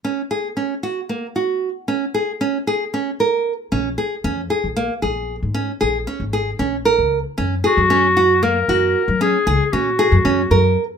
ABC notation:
X:1
M:7/8
L:1/16
Q:1/4=115
K:F#
V:1 name="Clarinet"
z12 z2 | z12 z2 | z12 z2 | z12 z2 |
z2 F6 A6 | G4 F8 z2 |]
V:2 name="Nylon-string guitar"
C2 G2 C2 F2 A,2 F4 | C2 G2 C2 G2 C2 A4 | C2 G2 C2 G2 A,2 G4 | C2 G2 C2 G2 C2 A4 |
C2 G2 C2 F2 A,2 F4 | C2 G2 C2 G2 C2 A4 |]
V:3 name="Upright bass" clef=bass
z12 z2 | z12 z2 | A,,,2 z2 E,,2 z A,,,2 z A,,,3 G,,- | G,, z A,,,2 z G,,,3 A,,,3 C,,2 z |
F,,2 z F,,6- F,, F,,2 z F,- | F, z C,, z A,,3 F,, F,,2 F,,2 z2 |]